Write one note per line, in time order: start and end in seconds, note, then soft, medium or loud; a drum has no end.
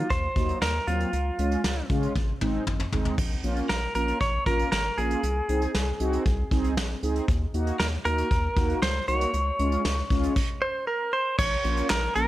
0.00 0.13 F4 medium
0.10 0.28 D#2 loud
0.10 0.58 C5 loud
0.10 kick loud
0.10 closed hi-hat medium
0.36 0.54 D#2 medium
0.36 0.59 F#3 medium
0.36 0.59 A#3 medium
0.36 0.59 D#4 medium
0.36 kick medium
0.36 closed hi-hat medium
0.49 closed hi-hat medium
0.62 0.80 D#2 loud
0.62 0.86 A#4 loud
0.62 snare loud
0.87 1.05 D#2 loud
0.87 1.10 F#3 medium
0.87 1.10 A#3 medium
0.87 1.10 C4 medium
0.87 1.86 F4 medium
0.87 closed hi-hat medium
1.00 closed hi-hat medium
1.13 1.31 C#2 loud
1.13 closed hi-hat medium
1.39 1.57 C#2 loud
1.39 1.61 G#3 medium
1.39 1.61 C#4 medium
1.39 1.61 F4 medium
1.39 closed hi-hat medium
1.51 closed hi-hat soft
1.64 1.82 C#2 loud
1.64 snare loud
1.90 2.08 C#3 medium
1.90 2.13 G#3 medium
1.90 2.13 C#4 medium
1.90 2.13 F4 loud
1.90 kick medium
1.90 closed hi-hat medium
2.03 closed hi-hat medium
2.16 2.34 G#1 medium
2.16 kick medium
2.16 high tom medium
2.41 2.59 G#1 medium
2.41 2.64 G#3 medium
2.41 2.64 C4 medium
2.41 2.64 D#4 loud
2.41 mid tom medium
2.67 2.85 G#1 loud
2.67 mid tom medium
2.80 mid tom medium
2.92 3.10 G#1 loud
2.92 3.15 G#3 medium
2.92 3.15 C4 medium
2.92 3.15 D#4 loud
2.92 floor tom medium
3.05 floor tom medium
3.18 3.36 A#1 loud
3.18 kick loud
3.18 crash medium
3.44 3.62 A#1 loud
3.44 3.67 A#3 medium
3.44 3.67 C#4 medium
3.44 3.67 F4 loud
3.44 closed hi-hat medium
3.56 closed hi-hat soft
3.69 3.87 A#1 medium
3.69 3.94 A#4 medium
3.69 snare loud
3.95 4.13 A#1 loud
3.95 4.18 A#3 medium
3.95 4.18 C#4 medium
3.95 4.18 F4 medium
3.95 4.19 A#4 medium
3.95 closed hi-hat medium
4.08 closed hi-hat medium
4.21 4.39 A#1 loud
4.21 4.46 C#5 loud
4.21 kick medium
4.21 closed hi-hat medium
4.46 4.64 A#1 loud
4.46 4.69 A#3 medium
4.46 4.69 C#4 medium
4.46 4.69 F4 medium
4.46 4.71 A#4 medium
4.46 kick medium
4.46 closed hi-hat medium
4.59 closed hi-hat medium
4.72 4.90 G#1 medium
4.72 4.98 A#4 medium
4.72 snare loud
4.98 5.16 A#1 medium
4.98 5.21 A#3 medium
4.98 5.20 C#4 medium
4.98 5.20 F4 medium
4.98 6.99 G#4 medium
4.98 closed hi-hat medium
5.11 closed hi-hat medium
5.23 5.41 C2 loud
5.23 closed hi-hat medium
5.49 5.67 C2 loud
5.49 5.72 C4 medium
5.49 5.72 D#4 medium
5.49 5.72 G#4 medium
5.49 closed hi-hat medium
5.62 closed hi-hat medium
5.75 5.93 C2 loud
5.75 snare loud
6.00 6.18 C2 loud
6.00 6.23 C4 medium
6.00 6.23 D#4 medium
6.00 6.23 F#4 loud
6.00 closed hi-hat medium
6.13 closed hi-hat medium
6.26 6.44 C2 loud
6.26 kick medium
6.26 closed hi-hat medium
6.51 6.79 C2 loud
6.51 6.74 C4 medium
6.51 6.74 D#4 medium
6.51 6.74 G#4 loud
6.51 kick medium
6.51 closed hi-hat medium
6.64 closed hi-hat medium
6.77 6.95 A#1 medium
6.77 snare loud
7.03 7.21 C#2 loud
7.03 7.26 C4 medium
7.03 7.26 D#4 medium
7.03 7.26 G#4 loud
7.03 closed hi-hat medium
7.16 closed hi-hat medium
7.28 7.46 D#2 loud
7.28 kick loud
7.28 closed hi-hat medium
7.54 7.72 D#2 loud
7.54 7.77 A#3 medium
7.54 7.77 D#4 medium
7.54 7.77 F#4 loud
7.54 closed hi-hat medium
7.67 closed hi-hat medium
7.80 7.98 D#2 loud
7.80 7.87 A#4 medium
7.80 snare loud
8.05 8.23 D#2 loud
8.05 8.28 A#3 medium
8.05 8.28 D#4 medium
8.05 8.28 F#4 medium
8.05 8.82 A#4 loud
8.05 closed hi-hat medium
8.18 closed hi-hat medium
8.31 8.49 D#2 loud
8.31 kick medium
8.31 closed hi-hat medium
8.57 8.75 D#2 medium
8.57 8.79 A#3 medium
8.57 8.79 D#4 medium
8.57 8.79 F#4 medium
8.57 kick medium
8.57 closed hi-hat medium
8.69 closed hi-hat medium
8.82 9.00 C#2 loud
8.82 9.08 C5 loud
8.82 snare loud
9.08 9.26 C2 loud
9.08 9.31 A#3 medium
9.08 9.31 D#4 medium
9.08 9.31 F#4 medium
9.08 10.83 C#5 medium
9.08 closed hi-hat medium
9.21 closed hi-hat medium
9.34 9.51 C#2 loud
9.34 closed hi-hat medium
9.59 9.77 C#2 loud
9.59 9.82 G#3 medium
9.59 9.82 C#4 medium
9.59 9.82 F4 medium
9.59 closed hi-hat medium
9.72 closed hi-hat medium
9.85 10.03 C#2 loud
9.85 snare loud
10.10 10.28 C#2 medium
10.10 10.33 G#3 medium
10.10 10.33 C#4 medium
10.10 10.33 F4 loud
10.10 kick loud
10.10 closed hi-hat medium
10.23 closed hi-hat medium
10.36 kick loud
10.36 crash medium
10.62 10.86 C5 medium
10.87 11.11 A#4 medium
11.13 11.38 C5 medium
11.39 11.57 A#1 loud
11.39 11.90 C#5 loud
11.39 kick loud
11.39 crash loud
11.64 11.82 A#1 loud
11.64 11.87 A#3 medium
11.64 11.87 C#4 medium
11.64 11.87 F4 medium
11.64 closed hi-hat medium
11.77 closed hi-hat medium
11.90 12.08 A#1 loud
11.90 12.14 A#4 medium
11.90 snare loud
11.90 clap medium
11.90 closed hi-hat medium
12.15 12.28 A#1 loud
12.15 12.28 A#3 medium
12.15 12.28 C#4 medium
12.15 12.28 F4 medium
12.15 12.28 A#4 medium
12.15 closed hi-hat medium